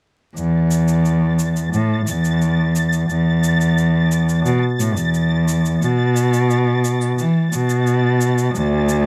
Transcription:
0.36 E2 A6, shaker
0.71 shaker
0.88 shaker
1.05 shaker
1.39 shaker
1.57 shaker
1.72 A2, shaker
2.06 E2, shaker
2.25 shaker
2.42 shaker
2.76 shaker
2.93 shaker
3.09 E2, shaker
3.44 shaker
3.61 shaker
3.78 shaker
4.12 shaker
4.29 shaker
4.45 B2, shaker
4.79 A2, shaker
4.96 E2, shaker
5.14 shaker
5.48 shaker
5.66 shaker
5.81 B2, shaker
6.17 shaker
6.34 shaker
6.50 shaker
6.85 shaker
7.02 shaker
7.18 E3, shaker
7.52 B2, shaker
7.70 shaker
7.87 shaker
8.21 shaker
8.38 shaker
8.54 D2, shaker
8.89 shaker

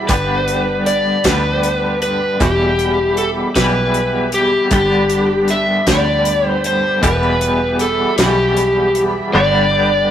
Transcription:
Already playing: G3 B3 G4 B5
0.08 G1 G2 D3 G3 B3 D4 G4 B4, kick, closed hi-hat, maracas
0.48 closed hi-hat
0.86 D5, closed hi-hat
1.24 D2 G2 D3 G3 B3 D4 G4 B4, kick, snare, closed hi-hat, maracas
1.63 closed hi-hat, maracas
2.02 B4, closed hi-hat
2.40 E1 E2 B2 E3 G3 E4 G4, kick, closed hi-hat, maracas
2.79 closed hi-hat
3.17 A4, closed hi-hat
3.55 B1 E2 B2 E3 G3 E4 G4 B4, kick, snare, closed hi-hat, maracas
3.94 closed hi-hat, maracas
4.32 G4, closed hi-hat
4.71 G1 G2 D3 G3 B3 D4 G4, kick, closed hi-hat, maracas
5.10 closed hi-hat
5.48 E5, closed hi-hat
5.87 D2 G2 D3 G3 B3 D4 G4 D5, kick, snare, closed hi-hat, maracas
6.25 closed hi-hat, maracas
6.47 C5
6.64 C5, closed hi-hat
7.02 E1 E2 B2 E3 G3 B3 E4 G4 B4, kick, closed hi-hat, maracas
7.22 maracas
7.41 closed hi-hat
7.79 A4, closed hi-hat, maracas
8.18 B1 E2 B2 E3 G3 B3 G4, snare, closed hi-hat, maracas
8.57 closed hi-hat
8.95 closed hi-hat
9.33 G1 G2 D3 G3 B3 D4 G4 D5
9.71 G3 B3 D4 G4

